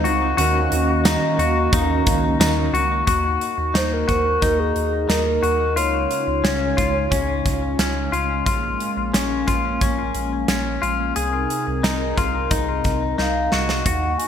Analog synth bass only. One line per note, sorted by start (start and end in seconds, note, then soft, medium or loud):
0.04 0.34 C#2 loud
0.38 0.68 D#2 loud
0.72 1.16 D#2 loud
1.38 1.68 D#2 loud
1.73 2.02 D#2 loud
2.07 2.36 C#2 medium
2.39 2.69 D#2 medium
2.73 3.03 C#2 loud
3.07 3.37 D#2 loud
3.58 3.73 D#2 medium
3.75 4.04 D#2 medium
4.08 4.38 D#2 medium
4.43 4.72 D#2 loud
4.76 5.06 D#2 medium
5.09 5.39 D#2 medium
5.43 5.78 D#2 medium
5.77 6.06 C#2 loud
6.27 6.42 C#2 medium
6.44 6.74 C#2 medium
6.78 7.08 C#2 medium
7.11 7.41 C#2 medium
7.46 7.75 C#2 medium
7.79 8.09 C#2 medium
8.12 8.42 C#2 medium
8.47 8.76 A#1 loud
8.97 9.12 A#1 medium
9.14 9.44 A#1 medium
9.48 9.78 A#1 medium
9.81 10.11 A#1 medium
10.15 10.45 A#1 medium
10.49 10.79 A#1 medium
10.83 11.12 A#1 loud
11.17 11.46 C2 loud
11.67 11.82 C2 medium
11.84 12.13 C2 medium
12.18 12.47 C2 medium
12.51 12.81 C2 medium
12.85 13.14 C2 medium
13.19 13.49 C2 medium
13.53 13.83 C2 medium
13.86 14.15 D#2 loud